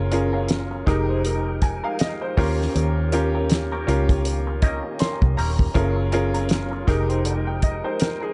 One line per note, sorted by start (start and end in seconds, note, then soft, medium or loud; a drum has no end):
0.00 0.83 F#1 loud
0.00 0.86 F#3 medium
0.00 0.12 C#4 medium
0.00 0.86 C#4 medium
0.00 0.12 F4 medium
0.00 0.86 F4 medium
0.00 0.13 G#4 medium
0.00 0.13 A#4 medium
0.00 2.35 A#4 medium
0.11 0.75 C#4 medium
0.11 0.76 F4 medium
0.11 0.76 G#4 medium
0.11 0.76 A#4 medium
0.11 muted clean electric guitar stroke soft
0.11 closed hi-hat medium
0.33 0.47 F#3 soft
0.33 0.46 C#4 medium
0.33 0.46 F4 medium
0.33 0.46 A#4 medium
0.48 muted clean electric guitar stroke soft
0.48 snare loud
0.48 closed hi-hat medium
0.71 muted clean electric guitar stroke soft
0.86 1.80 F1 medium
0.86 2.36 F3 medium
0.86 1.04 G#3 medium
0.86 2.36 G#3 medium
0.86 2.11 D#4 medium
0.86 1.04 D#4 medium
0.86 2.36 D#4 medium
0.86 2.12 G4 medium
0.86 1.05 G4 medium
0.86 2.12 G#4 medium
0.86 2.12 A#4 medium
0.86 1.05 A#4 medium
0.86 2.36 G5 medium
0.86 kick loud
0.86 snare soft
0.86 closed hi-hat medium
1.09 1.22 G#3 medium
1.09 1.22 D#4 medium
1.09 1.22 G4 medium
1.09 1.21 C5 medium
1.24 1.46 G#3 medium
1.24 1.47 D#4 medium
1.24 1.47 G4 medium
1.24 1.47 A#4 medium
1.24 closed hi-hat loud
1.62 1.83 G#5 medium
1.62 muted clean electric guitar stroke soft
1.62 kick medium
1.62 closed hi-hat medium
1.84 1.97 G#3 soft
1.84 1.97 D#4 soft
1.84 1.97 G4 medium
1.84 1.96 A#4 medium
1.84 1.99 F5 medium
1.99 2.21 D#5 medium
1.99 muted clean electric guitar stroke soft
1.99 snare loud
1.99 closed hi-hat medium
2.21 2.57 C5 medium
2.21 muted clean electric guitar stroke soft
2.37 2.67 D#2 medium
2.37 5.72 D#3 medium
2.37 2.54 A#3 medium
2.37 5.72 A#3 medium
2.37 3.01 C#4 medium
2.37 6.84 C#4 medium
2.37 2.55 C#4 medium
2.37 3.01 F4 medium
2.37 5.72 G4 medium
2.37 3.01 G4 medium
2.37 2.55 G4 medium
2.37 3.01 A#4 loud
2.37 2.55 C5 medium
2.37 kick loud
2.37 open hi-hat medium
2.59 2.72 A#3 soft
2.59 2.72 C#4 medium
2.59 2.72 G4 soft
2.59 2.71 A#4 medium
2.59 snare soft
2.75 3.84 D#2 loud
2.75 2.97 A#3 medium
2.75 2.97 C#4 medium
2.75 2.96 G4 medium
2.75 2.96 A#4 medium
2.75 closed hi-hat medium
2.97 muted clean electric guitar stroke soft
3.12 3.76 C#4 medium
3.12 3.76 F4 medium
3.12 3.76 G4 medium
3.12 3.77 A#4 medium
3.12 muted clean electric guitar stroke soft
3.12 closed hi-hat medium
3.35 3.48 A#3 soft
3.35 3.48 C#4 soft
3.35 3.47 G4 soft
3.35 3.47 A#4 medium
3.50 muted clean electric guitar stroke soft
3.50 snare loud
3.50 closed hi-hat medium
3.72 3.87 A#3 medium
3.72 3.87 C#4 medium
3.72 3.88 G4 medium
3.72 3.88 A#4 medium
3.87 4.81 C#2 medium
3.87 5.12 C#4 medium
3.87 5.12 F4 medium
3.87 5.12 G4 medium
3.87 5.13 A#4 medium
3.87 muted clean electric guitar stroke soft
3.87 closed hi-hat medium
4.09 muted clean electric guitar stroke soft
4.09 kick medium
4.09 closed hi-hat medium
4.25 closed hi-hat loud
4.47 muted clean electric guitar stroke soft
4.62 4.85 A#3 medium
4.62 4.85 C#4 medium
4.62 4.84 G4 medium
4.62 4.83 A#4 medium
4.62 4.97 D#5 medium
4.62 kick medium
4.62 closed hi-hat medium
4.84 muted clean electric guitar stroke soft
4.99 5.22 A#3 medium
4.99 5.22 C#4 medium
4.99 5.21 G4 medium
4.99 5.21 A#4 medium
4.99 5.35 C6 medium
4.99 snare loud
4.99 closed hi-hat loud
5.22 5.34 C2 loud
5.22 muted clean electric guitar stroke soft
5.22 kick loud
5.37 5.67 D#1 medium
5.37 5.55 A#3 medium
5.37 5.55 C#4 medium
5.37 5.55 G4 medium
5.37 5.56 A#4 medium
5.37 5.72 A#5 medium
5.37 open hi-hat medium
5.59 muted clean electric guitar stroke soft
5.59 kick medium
5.74 6.84 F#1 loud
5.74 5.98 F#3 medium
5.74 6.87 F#3 medium
5.74 6.07 C#4 medium
5.74 5.96 C#4 medium
5.74 6.07 F4 medium
5.74 6.87 F4 medium
5.74 5.96 F4 medium
5.74 6.07 G#4 medium
5.74 8.34 A#4 medium
5.74 6.07 A#4 loud
5.74 5.95 A#4 loud
5.74 kick loud
5.74 closed hi-hat medium
5.96 muted clean electric guitar stroke soft
6.12 6.76 C#4 medium
6.12 6.77 F4 medium
6.12 6.77 G#4 medium
6.12 6.77 A#4 medium
6.12 muted clean electric guitar stroke soft
6.12 closed hi-hat medium
6.34 6.48 F#3 soft
6.34 6.48 C#4 medium
6.34 6.47 F4 medium
6.34 6.47 A#4 medium
6.34 closed hi-hat medium
6.49 muted clean electric guitar stroke soft
6.49 snare loud
6.49 closed hi-hat medium
6.72 muted clean electric guitar stroke soft
6.87 7.81 F1 medium
6.87 8.34 F3 medium
6.87 7.05 G#3 soft
6.87 8.34 G#3 medium
6.87 8.12 D#4 medium
6.87 8.34 D#4 medium
6.87 7.05 D#4 soft
6.87 7.25 G4 medium
6.87 7.05 G4 medium
6.87 7.25 G#4 medium
6.87 7.26 A#4 medium
6.87 7.06 A#4 medium
6.87 8.34 G5 medium
6.87 kick loud
6.87 snare soft
6.87 closed hi-hat medium
7.09 7.23 G#3 soft
7.09 7.22 D#4 soft
7.09 7.22 G4 medium
7.09 7.22 C5 medium
7.09 closed hi-hat medium
7.24 7.48 G#3 medium
7.24 7.48 D#4 medium
7.24 7.48 G4 medium
7.24 7.49 A#4 medium
7.24 closed hi-hat loud
7.47 7.62 G5 medium
7.62 7.84 D#5 medium
7.62 muted clean electric guitar stroke soft
7.62 kick medium
7.62 closed hi-hat medium
7.84 7.98 G#3 soft
7.84 7.98 D#4 soft
7.84 7.97 G4 medium
7.84 7.97 A#4 medium
7.84 7.99 C5 medium
8.00 8.21 A#4 medium
8.00 muted clean electric guitar stroke soft
8.00 snare loud
8.00 closed hi-hat loud
8.21 8.34 G#4 medium
8.21 muted clean electric guitar stroke soft